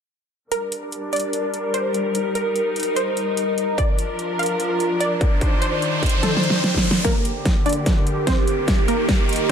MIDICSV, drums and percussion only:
0, 0, Header, 1, 2, 480
1, 0, Start_track
1, 0, Key_signature, -2, "minor"
1, 0, Tempo, 408163
1, 606, Time_signature, 4, 2, 24, 8
1, 11191, End_track
2, 0, Start_track
2, 0, Title_t, "Drums"
2, 606, Note_on_c, 9, 42, 72
2, 724, Note_off_c, 9, 42, 0
2, 846, Note_on_c, 9, 42, 70
2, 964, Note_off_c, 9, 42, 0
2, 1086, Note_on_c, 9, 42, 49
2, 1204, Note_off_c, 9, 42, 0
2, 1326, Note_on_c, 9, 42, 44
2, 1368, Note_off_c, 9, 42, 0
2, 1368, Note_on_c, 9, 42, 58
2, 1406, Note_off_c, 9, 42, 0
2, 1406, Note_on_c, 9, 42, 71
2, 1524, Note_off_c, 9, 42, 0
2, 1566, Note_on_c, 9, 42, 71
2, 1684, Note_off_c, 9, 42, 0
2, 1806, Note_on_c, 9, 42, 45
2, 1924, Note_off_c, 9, 42, 0
2, 2046, Note_on_c, 9, 42, 72
2, 2164, Note_off_c, 9, 42, 0
2, 2286, Note_on_c, 9, 42, 47
2, 2404, Note_off_c, 9, 42, 0
2, 2527, Note_on_c, 9, 42, 69
2, 2644, Note_off_c, 9, 42, 0
2, 2766, Note_on_c, 9, 42, 70
2, 2884, Note_off_c, 9, 42, 0
2, 3006, Note_on_c, 9, 42, 48
2, 3124, Note_off_c, 9, 42, 0
2, 3247, Note_on_c, 9, 42, 43
2, 3288, Note_off_c, 9, 42, 0
2, 3288, Note_on_c, 9, 42, 57
2, 3327, Note_off_c, 9, 42, 0
2, 3327, Note_on_c, 9, 42, 72
2, 3444, Note_off_c, 9, 42, 0
2, 3487, Note_on_c, 9, 42, 70
2, 3604, Note_off_c, 9, 42, 0
2, 3727, Note_on_c, 9, 42, 46
2, 3844, Note_off_c, 9, 42, 0
2, 3967, Note_on_c, 9, 42, 72
2, 4084, Note_off_c, 9, 42, 0
2, 4207, Note_on_c, 9, 42, 48
2, 4325, Note_off_c, 9, 42, 0
2, 4446, Note_on_c, 9, 36, 109
2, 4447, Note_on_c, 9, 42, 70
2, 4564, Note_off_c, 9, 36, 0
2, 4565, Note_off_c, 9, 42, 0
2, 4687, Note_on_c, 9, 42, 68
2, 4804, Note_off_c, 9, 42, 0
2, 4927, Note_on_c, 9, 42, 45
2, 5044, Note_off_c, 9, 42, 0
2, 5167, Note_on_c, 9, 42, 42
2, 5208, Note_off_c, 9, 42, 0
2, 5208, Note_on_c, 9, 42, 55
2, 5246, Note_off_c, 9, 42, 0
2, 5246, Note_on_c, 9, 42, 68
2, 5364, Note_off_c, 9, 42, 0
2, 5406, Note_on_c, 9, 42, 69
2, 5524, Note_off_c, 9, 42, 0
2, 5646, Note_on_c, 9, 42, 45
2, 5764, Note_off_c, 9, 42, 0
2, 5886, Note_on_c, 9, 42, 71
2, 6004, Note_off_c, 9, 42, 0
2, 6126, Note_on_c, 9, 36, 102
2, 6126, Note_on_c, 9, 42, 46
2, 6244, Note_off_c, 9, 36, 0
2, 6244, Note_off_c, 9, 42, 0
2, 6366, Note_on_c, 9, 36, 110
2, 6366, Note_on_c, 9, 42, 67
2, 6484, Note_off_c, 9, 36, 0
2, 6484, Note_off_c, 9, 42, 0
2, 6606, Note_on_c, 9, 42, 68
2, 6724, Note_off_c, 9, 42, 0
2, 6847, Note_on_c, 9, 42, 46
2, 6964, Note_off_c, 9, 42, 0
2, 7086, Note_on_c, 9, 36, 57
2, 7087, Note_on_c, 9, 42, 42
2, 7128, Note_off_c, 9, 42, 0
2, 7128, Note_on_c, 9, 42, 56
2, 7167, Note_off_c, 9, 42, 0
2, 7167, Note_on_c, 9, 42, 67
2, 7204, Note_off_c, 9, 36, 0
2, 7285, Note_off_c, 9, 42, 0
2, 7327, Note_on_c, 9, 38, 62
2, 7327, Note_on_c, 9, 42, 69
2, 7444, Note_off_c, 9, 38, 0
2, 7444, Note_off_c, 9, 42, 0
2, 7487, Note_on_c, 9, 38, 65
2, 7567, Note_on_c, 9, 42, 45
2, 7604, Note_off_c, 9, 38, 0
2, 7646, Note_on_c, 9, 38, 69
2, 7684, Note_off_c, 9, 42, 0
2, 7764, Note_off_c, 9, 38, 0
2, 7807, Note_on_c, 9, 38, 84
2, 7807, Note_on_c, 9, 42, 69
2, 7924, Note_off_c, 9, 38, 0
2, 7924, Note_off_c, 9, 42, 0
2, 7932, Note_on_c, 9, 36, 59
2, 7966, Note_on_c, 9, 38, 85
2, 8047, Note_on_c, 9, 42, 45
2, 8050, Note_off_c, 9, 36, 0
2, 8084, Note_off_c, 9, 38, 0
2, 8127, Note_on_c, 9, 38, 93
2, 8165, Note_off_c, 9, 42, 0
2, 8172, Note_on_c, 9, 42, 32
2, 8244, Note_off_c, 9, 38, 0
2, 8286, Note_off_c, 9, 42, 0
2, 8286, Note_on_c, 9, 36, 88
2, 8286, Note_on_c, 9, 38, 46
2, 8286, Note_on_c, 9, 42, 76
2, 8404, Note_off_c, 9, 36, 0
2, 8404, Note_off_c, 9, 38, 0
2, 8404, Note_off_c, 9, 42, 0
2, 8527, Note_on_c, 9, 42, 75
2, 8644, Note_off_c, 9, 42, 0
2, 8766, Note_on_c, 9, 36, 90
2, 8767, Note_on_c, 9, 38, 47
2, 8767, Note_on_c, 9, 42, 52
2, 8884, Note_off_c, 9, 36, 0
2, 8884, Note_off_c, 9, 38, 0
2, 8884, Note_off_c, 9, 42, 0
2, 9006, Note_on_c, 9, 42, 46
2, 9048, Note_off_c, 9, 42, 0
2, 9048, Note_on_c, 9, 42, 63
2, 9086, Note_off_c, 9, 42, 0
2, 9086, Note_on_c, 9, 42, 77
2, 9204, Note_off_c, 9, 42, 0
2, 9246, Note_on_c, 9, 36, 91
2, 9246, Note_on_c, 9, 38, 49
2, 9246, Note_on_c, 9, 42, 77
2, 9364, Note_off_c, 9, 36, 0
2, 9364, Note_off_c, 9, 38, 0
2, 9364, Note_off_c, 9, 42, 0
2, 9486, Note_on_c, 9, 42, 51
2, 9604, Note_off_c, 9, 42, 0
2, 9726, Note_on_c, 9, 36, 93
2, 9726, Note_on_c, 9, 38, 54
2, 9726, Note_on_c, 9, 42, 80
2, 9844, Note_off_c, 9, 36, 0
2, 9844, Note_off_c, 9, 38, 0
2, 9844, Note_off_c, 9, 42, 0
2, 9966, Note_on_c, 9, 42, 51
2, 10084, Note_off_c, 9, 42, 0
2, 10206, Note_on_c, 9, 36, 89
2, 10206, Note_on_c, 9, 38, 56
2, 10206, Note_on_c, 9, 42, 76
2, 10324, Note_off_c, 9, 36, 0
2, 10324, Note_off_c, 9, 38, 0
2, 10324, Note_off_c, 9, 42, 0
2, 10446, Note_on_c, 9, 42, 76
2, 10564, Note_off_c, 9, 42, 0
2, 10686, Note_on_c, 9, 36, 93
2, 10686, Note_on_c, 9, 38, 60
2, 10686, Note_on_c, 9, 42, 51
2, 10803, Note_off_c, 9, 38, 0
2, 10803, Note_off_c, 9, 42, 0
2, 10804, Note_off_c, 9, 36, 0
2, 10926, Note_on_c, 9, 42, 48
2, 10968, Note_off_c, 9, 42, 0
2, 10968, Note_on_c, 9, 42, 63
2, 11006, Note_off_c, 9, 42, 0
2, 11006, Note_on_c, 9, 42, 77
2, 11123, Note_off_c, 9, 42, 0
2, 11191, End_track
0, 0, End_of_file